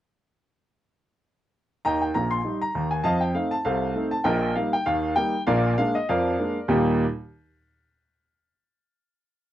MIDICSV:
0, 0, Header, 1, 2, 480
1, 0, Start_track
1, 0, Key_signature, -3, "major"
1, 0, Tempo, 606061
1, 1462, Time_signature, 2, 2, 24, 8
1, 7545, End_track
2, 0, Start_track
2, 0, Title_t, "Upright piano"
2, 0, Program_c, 0, 0
2, 1464, Note_on_c, 0, 82, 91
2, 1467, Note_on_c, 0, 39, 63
2, 1467, Note_on_c, 0, 51, 62
2, 1474, Note_on_c, 0, 79, 65
2, 1475, Note_on_c, 0, 75, 61
2, 1584, Note_off_c, 0, 79, 0
2, 1594, Note_off_c, 0, 75, 0
2, 1596, Note_on_c, 0, 79, 68
2, 1597, Note_off_c, 0, 82, 0
2, 1657, Note_off_c, 0, 39, 0
2, 1657, Note_off_c, 0, 51, 0
2, 1698, Note_on_c, 0, 82, 79
2, 1702, Note_off_c, 0, 79, 0
2, 1703, Note_on_c, 0, 34, 56
2, 1704, Note_on_c, 0, 46, 58
2, 1827, Note_on_c, 0, 84, 81
2, 1834, Note_off_c, 0, 82, 0
2, 1894, Note_off_c, 0, 34, 0
2, 1895, Note_off_c, 0, 46, 0
2, 1937, Note_on_c, 0, 63, 41
2, 1940, Note_on_c, 0, 55, 41
2, 2022, Note_off_c, 0, 84, 0
2, 2071, Note_on_c, 0, 82, 77
2, 2072, Note_off_c, 0, 55, 0
2, 2072, Note_off_c, 0, 63, 0
2, 2177, Note_on_c, 0, 39, 60
2, 2178, Note_on_c, 0, 51, 57
2, 2301, Note_off_c, 0, 82, 0
2, 2304, Note_on_c, 0, 80, 69
2, 2371, Note_off_c, 0, 39, 0
2, 2371, Note_off_c, 0, 51, 0
2, 2405, Note_on_c, 0, 81, 91
2, 2407, Note_on_c, 0, 53, 64
2, 2409, Note_on_c, 0, 41, 64
2, 2412, Note_on_c, 0, 77, 71
2, 2413, Note_on_c, 0, 75, 67
2, 2416, Note_off_c, 0, 80, 0
2, 2539, Note_on_c, 0, 79, 67
2, 2541, Note_off_c, 0, 75, 0
2, 2541, Note_off_c, 0, 77, 0
2, 2547, Note_off_c, 0, 81, 0
2, 2617, Note_off_c, 0, 53, 0
2, 2618, Note_off_c, 0, 41, 0
2, 2650, Note_on_c, 0, 77, 72
2, 2652, Note_on_c, 0, 57, 36
2, 2653, Note_off_c, 0, 79, 0
2, 2656, Note_on_c, 0, 63, 39
2, 2657, Note_on_c, 0, 60, 42
2, 2781, Note_on_c, 0, 81, 80
2, 2786, Note_off_c, 0, 57, 0
2, 2789, Note_off_c, 0, 63, 0
2, 2789, Note_off_c, 0, 77, 0
2, 2790, Note_off_c, 0, 60, 0
2, 2889, Note_on_c, 0, 77, 80
2, 2893, Note_on_c, 0, 36, 66
2, 2894, Note_off_c, 0, 81, 0
2, 2894, Note_on_c, 0, 48, 62
2, 2897, Note_on_c, 0, 69, 60
2, 2899, Note_on_c, 0, 72, 58
2, 3100, Note_off_c, 0, 36, 0
2, 3100, Note_off_c, 0, 48, 0
2, 3134, Note_on_c, 0, 57, 41
2, 3135, Note_on_c, 0, 60, 43
2, 3138, Note_on_c, 0, 63, 40
2, 3192, Note_off_c, 0, 77, 0
2, 3245, Note_off_c, 0, 69, 0
2, 3246, Note_off_c, 0, 72, 0
2, 3257, Note_on_c, 0, 81, 79
2, 3267, Note_off_c, 0, 57, 0
2, 3268, Note_off_c, 0, 60, 0
2, 3270, Note_off_c, 0, 63, 0
2, 3359, Note_on_c, 0, 79, 80
2, 3365, Note_on_c, 0, 34, 75
2, 3366, Note_on_c, 0, 46, 75
2, 3370, Note_on_c, 0, 70, 67
2, 3371, Note_off_c, 0, 81, 0
2, 3371, Note_on_c, 0, 75, 64
2, 3574, Note_off_c, 0, 34, 0
2, 3575, Note_off_c, 0, 46, 0
2, 3596, Note_off_c, 0, 70, 0
2, 3596, Note_off_c, 0, 79, 0
2, 3597, Note_off_c, 0, 75, 0
2, 3608, Note_on_c, 0, 77, 74
2, 3610, Note_on_c, 0, 55, 41
2, 3614, Note_on_c, 0, 58, 45
2, 3617, Note_on_c, 0, 63, 43
2, 3744, Note_off_c, 0, 55, 0
2, 3746, Note_off_c, 0, 58, 0
2, 3746, Note_off_c, 0, 77, 0
2, 3747, Note_on_c, 0, 79, 87
2, 3749, Note_off_c, 0, 63, 0
2, 3848, Note_on_c, 0, 77, 89
2, 3851, Note_on_c, 0, 39, 73
2, 3851, Note_on_c, 0, 51, 72
2, 3855, Note_off_c, 0, 79, 0
2, 4057, Note_off_c, 0, 51, 0
2, 4058, Note_off_c, 0, 39, 0
2, 4080, Note_off_c, 0, 77, 0
2, 4084, Note_on_c, 0, 79, 95
2, 4088, Note_on_c, 0, 55, 47
2, 4093, Note_on_c, 0, 58, 45
2, 4095, Note_on_c, 0, 63, 46
2, 4223, Note_off_c, 0, 55, 0
2, 4226, Note_off_c, 0, 58, 0
2, 4228, Note_off_c, 0, 63, 0
2, 4281, Note_off_c, 0, 79, 0
2, 4329, Note_on_c, 0, 77, 86
2, 4332, Note_on_c, 0, 46, 88
2, 4335, Note_on_c, 0, 34, 74
2, 4337, Note_on_c, 0, 74, 77
2, 4338, Note_on_c, 0, 70, 70
2, 4525, Note_off_c, 0, 77, 0
2, 4538, Note_off_c, 0, 46, 0
2, 4540, Note_off_c, 0, 34, 0
2, 4560, Note_off_c, 0, 74, 0
2, 4561, Note_off_c, 0, 70, 0
2, 4576, Note_on_c, 0, 77, 87
2, 4580, Note_on_c, 0, 56, 49
2, 4586, Note_on_c, 0, 58, 47
2, 4587, Note_on_c, 0, 62, 56
2, 4711, Note_off_c, 0, 77, 0
2, 4711, Note_on_c, 0, 75, 84
2, 4712, Note_off_c, 0, 56, 0
2, 4716, Note_off_c, 0, 58, 0
2, 4716, Note_off_c, 0, 62, 0
2, 4818, Note_off_c, 0, 75, 0
2, 4822, Note_on_c, 0, 77, 81
2, 4825, Note_on_c, 0, 41, 75
2, 4825, Note_on_c, 0, 53, 76
2, 4830, Note_on_c, 0, 70, 61
2, 4832, Note_on_c, 0, 74, 61
2, 5027, Note_off_c, 0, 41, 0
2, 5027, Note_off_c, 0, 53, 0
2, 5064, Note_on_c, 0, 56, 38
2, 5066, Note_on_c, 0, 58, 40
2, 5068, Note_on_c, 0, 62, 45
2, 5195, Note_off_c, 0, 56, 0
2, 5197, Note_off_c, 0, 58, 0
2, 5198, Note_off_c, 0, 62, 0
2, 5207, Note_off_c, 0, 77, 0
2, 5275, Note_off_c, 0, 70, 0
2, 5276, Note_off_c, 0, 74, 0
2, 5293, Note_on_c, 0, 39, 86
2, 5295, Note_on_c, 0, 46, 72
2, 5295, Note_on_c, 0, 55, 72
2, 5298, Note_on_c, 0, 58, 69
2, 5300, Note_on_c, 0, 79, 53
2, 5302, Note_on_c, 0, 67, 74
2, 5303, Note_on_c, 0, 63, 77
2, 5569, Note_off_c, 0, 39, 0
2, 5570, Note_off_c, 0, 46, 0
2, 5570, Note_off_c, 0, 55, 0
2, 5572, Note_off_c, 0, 58, 0
2, 5573, Note_off_c, 0, 79, 0
2, 5574, Note_off_c, 0, 63, 0
2, 5574, Note_off_c, 0, 67, 0
2, 7545, End_track
0, 0, End_of_file